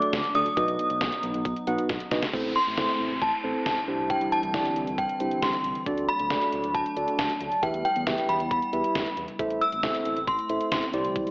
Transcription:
Already playing: analog synth pad F#3 A3 D4, tine electric piano A3 D4 F#4 A4 D5, synth bell D6
0.02 closed hi-hat
0.13 analog synth bass D2, kick, snare, closed hi-hat
0.24 closed hi-hat
0.35 analog synth bass D2, tine electric piano A3 D4 F#4 A4 D5, synth bell D#6, closed hi-hat
0.46 closed hi-hat
0.57 analog synth bass B1, analog synth pad F#3 B3 D#4, tine electric piano B3 D#4 F#4 B4 D#5, kick, closed hi-hat
0.68 analog synth bass B1, closed hi-hat
0.79 closed hi-hat
0.90 analog synth bass B1, closed hi-hat
1.01 analog synth bass B1, kick, snare, closed hi-hat
1.12 closed hi-hat
1.23 analog synth bass B1, closed hi-hat
1.34 analog synth bass B1, closed hi-hat
1.45 analog synth bass B1, kick, closed hi-hat
1.56 closed hi-hat
1.67 analog synth bass B1, tine electric piano B3 D#4 F#4 B4 F#5, closed hi-hat
1.78 closed hi-hat
1.89 analog synth bass B1, kick, snare, closed hi-hat
2.00 closed hi-hat
2.11 analog synth bass B1, tine electric piano B3 D#4 F#4 B4 D#5, snare, closed hi-hat
2.22 snare, closed hi-hat
2.33 analog synth bass A1, analog synth pad A3 C4 E4, tine electric piano C4 E4 A4 C5, kick, downlifter
2.45 analog synth bass A1
2.56 synth bell C6
2.67 analog synth bass A1
2.77 analog synth bass A1, tine electric piano C4 E4 A4 C5, kick, snare
3.00 analog synth bass A1
3.11 analog synth bass A1
3.22 analog synth bass A1, synth bell A5, kick
3.44 analog synth bass A1, tine electric piano C4 E4 A4 C5
3.66 analog synth bass A1, synth bell A5, kick, snare
3.88 analog synth bass C2, analog synth pad D3 E3 G3 C4, tine electric piano D4 E4 G4 C5
4.10 synth bell G5, kick, closed hi-hat
4.21 analog synth bass C2, closed hi-hat
4.32 synth bell A5, closed hi-hat
4.43 analog synth bass C2, closed hi-hat
4.54 analog synth bass C2, tine electric piano D4 E4 G4 D5, kick, snare, closed hi-hat
4.65 closed hi-hat
4.76 analog synth bass C2, closed hi-hat
4.87 analog synth bass C2, closed hi-hat
4.98 analog synth bass C2, synth bell G5, kick, closed hi-hat
5.09 closed hi-hat
5.20 analog synth bass C2, tine electric piano D4 E4 G4 C5, closed hi-hat
5.31 closed hi-hat
5.42 analog synth bass C2, synth bell C6, kick, snare, closed hi-hat
5.53 closed hi-hat
5.64 analog synth bass C2, closed hi-hat
5.75 closed hi-hat
5.86 analog synth bass D2, analog synth pad F#3 A3 D4, tine electric piano D4 F#4 A4 D5, kick, closed hi-hat
5.98 analog synth bass D2, closed hi-hat
6.09 synth bell B5, closed hi-hat
6.19 analog synth bass D2, closed hi-hat
6.30 analog synth bass D2, tine electric piano D4 F#4 A4 D5, kick, snare, closed hi-hat
6.42 closed hi-hat
6.53 analog synth bass D2, closed hi-hat
6.64 analog synth bass D2, closed hi-hat
6.75 analog synth bass D2, synth bell A5, kick, closed hi-hat
6.86 closed hi-hat
6.97 analog synth bass D2, tine electric piano D4 F#4 A4 D5, closed hi-hat
7.08 closed hi-hat
7.19 analog synth bass D2, synth bell A5, kick, snare, closed hi-hat
7.30 closed hi-hat
7.41 analog synth bass D2, closed hi-hat
7.52 closed hi-hat
7.63 analog synth bass E2, analog synth pad G3 B3 E4, tine electric piano E4 G4 B4 E5, synth bell G5, kick, closed hi-hat
7.74 analog synth bass E2, closed hi-hat
7.85 synth bell G5, closed hi-hat
7.96 analog synth bass E2, closed hi-hat
8.07 analog synth bass E2, tine electric piano E4 G4 B4 E5, kick, snare, closed hi-hat
8.18 closed hi-hat
8.29 analog synth bass E2, synth bell B5, closed hi-hat
8.40 analog synth bass E2, closed hi-hat
8.51 analog synth bass E2, synth bell B5, kick, closed hi-hat
8.62 closed hi-hat
8.73 analog synth bass E2, tine electric piano E4 G4 B4 E5, closed hi-hat
8.84 closed hi-hat
8.95 analog synth bass E2, kick, snare, closed hi-hat
9.06 closed hi-hat
9.17 analog synth bass E2, closed hi-hat
9.28 closed hi-hat
9.39 analog synth bass A1, analog synth pad A3 C4, tine electric piano E4 A4 C5 E5, kick, closed hi-hat
9.50 analog synth bass A1, closed hi-hat
9.61 synth bell E6, closed hi-hat
9.72 analog synth bass A1, closed hi-hat
9.83 analog synth bass A1, tine electric piano E4 A4 C5 E5, kick, snare, closed hi-hat
9.95 closed hi-hat
10.05 analog synth bass A1, closed hi-hat
10.17 analog synth bass A1, closed hi-hat
10.27 analog synth bass A1, synth bell C6, kick, closed hi-hat
10.39 closed hi-hat
10.49 analog synth bass A1, tine electric piano E4 A4 C5 E5, closed hi-hat
10.61 closed hi-hat
10.72 analog synth bass A1, synth bell C6, kick, snare, closed hi-hat
10.82 closed hi-hat
10.93 analog synth bass C2, analog synth pad D3 E3 G3, tine electric piano E4 G4 C5 D5, closed hi-hat
11.05 closed hi-hat
11.16 kick, closed hi-hat
11.27 analog synth bass C2, closed hi-hat

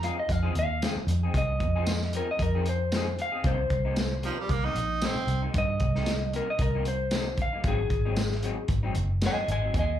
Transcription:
0.03 clean electric guitar F3 C4 D#4 G#4 F5, closed hi-hat
0.17 clean electric guitar D#5, muted clean electric guitar stroke
0.29 fingered electric bass F2, clean electric guitar F5, muted clean electric guitar stroke, kick, closed hi-hat
0.43 clean electric guitar F3 C4 D#4 G#4
0.55 fingered electric bass D#2, clean electric guitar F5, muted clean electric guitar stroke, closed hi-hat
0.82 clean electric guitar F3 C4 D#4 G#4, snare, closed hi-hat, tambourine
0.96 muted fingered electric bass stroke, muted clean electric guitar stroke
1.07 fingered electric bass F2, muted clean electric guitar stroke, closed hi-hat
1.23 clean electric guitar C4 D#4 G#4
1.34 fingered electric bass C2, clean electric guitar D#5, kick, closed hi-hat
1.49 muted clean electric guitar stroke
1.60 fingered electric bass F2, muted clean electric guitar stroke, kick, closed hi-hat
1.76 clean electric guitar F3 C4 D#4 G#4
1.87 snare, closed hi-hat, tambourine
2.02 muted clean electric guitar stroke, snare
2.13 clean electric guitar F3 C4 D#4 G#4 A#4, closed hi-hat
2.29 clean electric guitar D#5, muted clean electric guitar stroke
2.39 fingered electric bass F2, clean electric guitar A#4, muted clean electric guitar stroke, kick, closed hi-hat
2.55 clean electric guitar F3 C4 D#4 G#4
2.66 clean electric guitar C5, muted clean electric guitar stroke, closed hi-hat
2.92 clean electric guitar F3 C4 D#4 G#4, snare, closed hi-hat, tambourine
3.07 muted clean electric guitar stroke
3.19 clean electric guitar F5, muted clean electric guitar stroke, closed hi-hat
3.32 clean electric guitar C4 D#4 G#4
3.44 fingered electric bass C2, clean electric guitar C3 G3 A#3 D#4 C5, kick, closed hi-hat
3.59 muted clean electric guitar stroke
3.70 fingered electric bass C2, muted clean electric guitar stroke, kick, closed hi-hat
3.85 clean electric guitar C3 G3 A#3 D#4
3.96 snare, closed hi-hat, tambourine
4.12 muted clean electric guitar stroke
4.23 clean electric guitar C3 G3 A#3 D#4, tenor saxophone F3, closed hi-hat
4.38 tenor saxophone G3, muted clean electric guitar stroke
4.49 fingered electric bass C2, tenor saxophone A#3, muted clean electric guitar stroke, kick, closed hi-hat
4.64 clean electric guitar C3 G3 A#3 D#4, tenor saxophone D#4
4.75 fingered electric bass A#1, muted clean electric guitar stroke, closed hi-hat
5.02 clean electric guitar C3 G3 A#3 D#4, tenor saxophone C4, snare, closed hi-hat, tambourine
5.16 muted fingered electric bass stroke, muted clean electric guitar stroke
5.27 fingered electric bass C2, muted clean electric guitar stroke, closed hi-hat
5.42 clean electric guitar G3 A#3 D#4
5.54 fingered electric bass G2, kick, closed hi-hat
5.58 clean electric guitar D#5
5.69 muted clean electric guitar stroke
5.80 fingered electric bass C2, muted clean electric guitar stroke, kick, closed hi-hat
5.95 clean electric guitar C3 G3 A#3 D#4, snare
6.06 snare, closed hi-hat, tambourine
6.23 muted clean electric guitar stroke
6.33 clean electric guitar C3 G3 A#3 D#4 A#4, closed hi-hat
6.49 clean electric guitar D#5, muted clean electric guitar stroke
6.59 fingered electric bass C2, clean electric guitar A#4, muted clean electric guitar stroke, kick, closed hi-hat
6.75 clean electric guitar C3 G3 A#3 D#4
6.85 clean electric guitar C5, muted clean electric guitar stroke, closed hi-hat
7.11 clean electric guitar C3 G3, snare, closed hi-hat, tambourine
7.15 clean electric guitar A#3 D#4
7.27 muted clean electric guitar stroke
7.37 muted clean electric guitar stroke, kick, closed hi-hat
7.42 clean electric guitar F5
7.53 clean electric guitar G3 A#3 D#4
7.64 fingered electric bass G#1, clean electric guitar G#2 F#3 C4, kick, closed hi-hat
7.68 clean electric guitar D#4 G#4
7.80 muted clean electric guitar stroke
7.90 fingered electric bass G#1, muted clean electric guitar stroke, kick, closed hi-hat
8.05 clean electric guitar G#2 F#3 C4 D#4
8.16 snare, closed hi-hat, tambourine
8.31 muted clean electric guitar stroke, snare
8.43 clean electric guitar G#2 F#3 C4 D#4, closed hi-hat
8.57 muted clean electric guitar stroke
8.68 fingered electric bass G#1, muted clean electric guitar stroke, kick, closed hi-hat
8.83 clean electric guitar G#2 F#3 C4 D#4
8.95 fingered electric bass F#1, muted clean electric guitar stroke, closed hi-hat
9.21 clean electric guitar G#2 F#3 C4 D#4, snare, closed hi-hat, tambourine
9.26 clean electric guitar D#5 G#5
9.36 muted fingered electric bass stroke, muted clean electric guitar stroke
9.48 fingered electric bass G#1, clean electric guitar D#5 G#5, muted clean electric guitar stroke, closed hi-hat
9.62 clean electric guitar F#3 C4 D#4
9.74 fingered electric bass D#2, kick, closed hi-hat
9.79 clean electric guitar D#5 G#5
9.89 muted clean electric guitar stroke

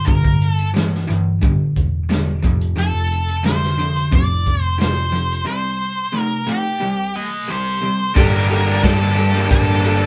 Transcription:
0.05 picked electric bass G1, overdriven electric guitar G2 D3, lead electric guitar A#4, kick, closed hi-hat
0.25 picked electric bass G1, kick
0.42 closed hi-hat
0.50 lead electric guitar A4
0.58 closed hi-hat
0.74 overdriven electric guitar G2 E3, snare, closed hi-hat
0.94 snare
1.07 picked electric bass G1, overdriven electric guitar G2 E3, closed hi-hat
1.43 picked electric bass G1, overdriven electric guitar G2 D3, kick, closed hi-hat
1.76 picked electric bass E1, kick, closed hi-hat
2.10 overdriven electric guitar G2 D3, snare, closed hi-hat
2.44 picked electric bass F1, overdriven electric guitar F2 C3, kick, closed hi-hat
2.61 closed hi-hat
2.76 picked electric bass F1, overdriven electric guitar F2 C3, lead electric guitar A4, closed hi-hat
2.93 picked electric bass F1
3.12 closed hi-hat
3.28 closed hi-hat
3.43 overdriven electric guitar F2 D3, lead electric guitar C5, snare, closed hi-hat
3.63 snare
3.79 overdriven electric guitar F2 D3, closed hi-hat
3.96 closed hi-hat
4.12 picked electric bass F1, overdriven electric guitar F2 C3, lead electric guitar D5, kick, closed hi-hat
4.46 picked electric bass F1, kick, closed hi-hat
4.61 lead electric guitar C5
4.79 overdriven electric guitar F2 C3, lead electric guitar C5, snare, closed hi-hat
5.12 overdriven electric guitar F2 C3, closed hi-hat
5.32 closed hi-hat
5.46 overdriven electric guitar C3 G3, lead electric guitar C5
6.14 overdriven electric guitar C3 A3
6.20 lead electric guitar A#4
6.47 overdriven electric guitar C3 A3, lead electric guitar G4
6.81 overdriven electric guitar C3 G3
7.16 lead electric guitar D#5
7.50 overdriven electric guitar C3 G3, lead electric guitar C5
7.83 overdriven electric guitar C3 G3
8.15 picked electric bass G1, overdriven electric guitar G2 D3 G3 A#3 D4, honky-tonk piano A#3 G4 A4, tonewheel organ A#3 D4 G4 A5, distorted electric guitar G4, lead electric guitar A#4, kick, closed hi-hat
8.32 overdriven electric guitar G3 A#3 D4, tambourine
8.49 honky-tonk piano A#3 G4 A4, closed hi-hat, tambourine
8.67 tambourine
8.82 overdriven electric guitar G2 D3 G3 A#3 D4, picked electric bass G2, honky-tonk piano A#3 G4 A4, lead electric guitar A4, kick, snare, closed hi-hat, tambourine
8.99 overdriven electric guitar G3 A#3 D4, tambourine
9.14 distorted electric guitar G2 D3 G3 A#3 D4 G4, honky-tonk piano A#3 G4 A4, muted overdriven electric guitar stroke, closed hi-hat, tambourine
9.32 overdriven electric guitar G3 A#3 D4, snare, tambourine
9.50 picked electric bass G1, honky-tonk piano A#3 G4 A#4, lead electric guitar A4, kick, closed hi-hat
9.66 overdriven electric guitar G3 A#3 D4, tambourine
9.83 overdriven electric guitar D3 G3 A#3 D4, honky-tonk piano A#3 G4 A4, closed hi-hat, tambourine

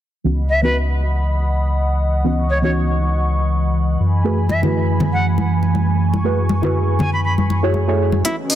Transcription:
0.24 analog synth bass C#2, synth stab E3 B3 C#4 D#4 F#4, ambient pad E3, analog synth pad D#5 F#5 B5
0.32 ambient pad D#6
0.42 ambient pad F#5
0.50 flute E5
0.62 synth stab E3 B3 C#4 D#4 F#4, flute B4
1.07 ambient pad B5
2.24 synth stab E3 B3 C#4 D#4 F#4, analog synth pad C#6
2.50 flute C#5
2.62 synth stab E3 B3 C#4 D#4 F#4, flute C#5
4.00 analog synth bass F#2, analog synth pad G#5 B5
4.24 synth stab A3 E4 F#4 G#4 B4
4.40 ambient pad A3
4.49 flute E5, muted conga, high conga
4.62 synth stab A3 E4 F#4 G#4 B4, low conga
5.00 high conga, low conga
5.13 flute F#5
5.38 high conga
5.63 muted conga
5.75 high conga
6.00 analog synth pad C#6
6.14 high conga
6.24 synth stab A3 E4 F#4 G#4 B4
6.49 muted conga, high conga
6.62 synth stab A3 E4 F#4 G#4 B4, low conga
6.99 flute G#5, high conga, low conga
7.13 flute B5
7.25 flute B5
7.38 high conga
7.50 muted conga
7.63 synth stab A3 E4 F#4 G#4 C#5
7.74 high conga
7.88 synth stab A3 E4 F#4 G#4 C#5
8.12 high conga
8.24 synth stab E3 B3 C#4 D#4 F#4, analog synth pad C#4 F#4 B4 D#5 G#5, tenor saxophone E4, kick, closed hi-hat, riser
8.39 ambient pad C#5
8.50 tenor saxophone D#4, open hi-hat

